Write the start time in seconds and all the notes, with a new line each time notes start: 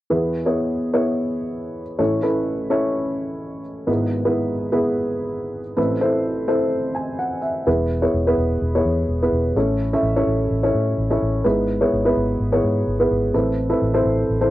0.10 E2 E3 B3 E4 G#4 B4
0.46 B3 E4 G#4 C#5
0.93 B3 E4 G#4 C#5
1.98 A1 A2 C#4 E4 A4 C#5
2.22 C#4 E4 A4 B4
2.70 C#4 E4 A4 C#5
3.87 G#1 G#2 B3 E4 G#4 B4
4.25 B3 E4 G#4 B4
4.72 B3 E4 G#4 B4
5.77 A1 A2 C4 E4 A4 B4
6.01 C4 E4 A4 C5
6.48 C4 E4 A4 C5
6.95 G#5
7.19 F#5
7.42 E5
7.66 E1 E3 B3 E4 G#4 B4
8.02 B3 E4 G#4 C#5
8.14 E1
8.27 B3 E4 G#4 B4
8.37 E1
8.62 E1
8.75 B3 E4 G#4 C#5
8.85 E2
9.09 E1
9.22 B3 E4 G#4 B4
9.32 E1
9.55 A1 A2 C#4 E4 A4 C#5
9.93 C#4 E4 A4 E5
10.03 A1
10.16 C#4 E4 A4 C#5
10.27 A1
10.51 A1
10.63 C#4 E4 A4 C#5
10.74 A2
10.98 A1
11.10 C#4 E4 A4 C#5
11.22 A1
11.44 G#1 G#2 B3 E4 G#4 B4
11.81 B3 E4 G#4 C#5
11.93 G#1
12.05 B3 E4 G#4 B4
12.17 G#1
12.40 G#1
12.52 B3 E4 G#4 C#5
12.64 G#2
12.87 G#1
12.99 B3 E4 G#4 B4
13.11 G#1
13.34 A1 A2 C4 E4 A4 B4
13.69 C4 E4 A4 B4
13.82 A1
13.94 C4 E4 A4 C5
14.05 A1
14.29 A1
14.41 C4 E4 A4 C5